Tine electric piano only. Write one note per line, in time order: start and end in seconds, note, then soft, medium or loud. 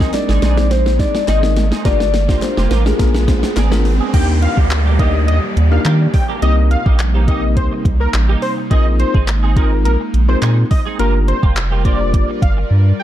0.00 0.29 C4 medium
0.00 0.29 D#4 medium
0.00 0.29 G#4 medium
0.00 0.29 A#4 medium
0.57 0.78 C4 medium
0.57 0.79 D#4 medium
0.57 0.79 G#4 medium
0.57 0.79 C5 medium
0.99 1.21 C4 medium
0.99 1.21 D#4 medium
0.99 1.21 G#4 medium
0.99 1.22 C5 medium
1.43 1.64 C4 medium
1.43 1.64 D#4 medium
1.43 1.64 G#4 medium
1.43 1.64 A#4 medium
1.85 2.07 D4 medium
1.85 2.07 F4 medium
1.85 2.07 G4 medium
1.85 2.07 A#4 medium
2.29 2.58 D4 medium
2.29 2.58 F4 medium
2.29 2.58 G4 medium
2.29 2.58 C5 medium
2.86 2.98 D4 medium
2.86 2.98 F4 medium
2.86 2.99 G4 medium
2.86 2.98 A#4 medium
2.99 3.22 D4 medium
2.99 3.23 F4 medium
2.99 3.23 G#4 medium
2.99 3.23 A#4 medium
3.28 3.50 D4 medium
3.28 3.50 F4 medium
3.28 3.50 G#4 medium
3.28 3.50 C5 medium
3.71 3.93 D4 medium
3.71 3.93 F4 medium
3.71 3.93 G#4 medium
3.71 3.93 A#4 loud
4.13 4.58 A#3 medium
4.13 4.58 D4 medium
4.13 4.58 D#4 medium
4.13 4.58 G4 medium
4.13 4.58 A#4 medium
4.99 5.36 A#3 medium
4.99 5.36 D4 medium
4.99 5.36 D#4 medium
4.99 5.36 G4 medium
4.99 5.36 A#4 medium
5.71 6.07 A#3 medium
5.71 6.07 D4 medium
5.71 6.07 D#4 medium
5.71 6.07 G4 medium
5.71 6.07 A#4 medium
6.42 6.79 A#3 medium
6.42 6.79 C4 medium
6.42 6.79 D#4 medium
6.42 6.79 G4 medium
6.42 6.79 A#4 medium
7.14 7.21 G4 medium
7.14 7.22 C5 medium
7.28 7.86 A#3 medium
7.28 7.86 C4 medium
7.28 7.86 D#4 medium
7.28 7.86 G4 medium
7.28 7.86 A#4 medium
8.71 9.15 C4 medium
8.71 9.15 D#4 medium
8.71 9.15 F4 medium
8.71 9.15 G#4 medium
8.71 9.15 A#4 medium
9.56 9.93 C4 medium
9.56 9.93 D#4 medium
9.56 9.93 F4 medium
9.56 9.93 G#4 medium
9.56 9.93 A#4 medium
10.29 10.64 C4 medium
10.29 10.64 D#4 medium
10.29 10.64 F4 medium
10.29 10.64 G#4 medium
10.29 10.65 A#4 medium
10.99 11.36 A#3 medium
10.99 11.36 D4 medium
10.99 11.36 F4 medium
10.99 11.36 G4 medium
10.99 11.36 A#4 medium
11.71 11.78 G4 medium
11.71 11.79 A#4 medium
11.85 12.43 A#3 medium
11.85 12.43 D4 medium
11.85 12.43 F4 medium
11.85 12.43 G4 medium
11.85 12.43 C5 medium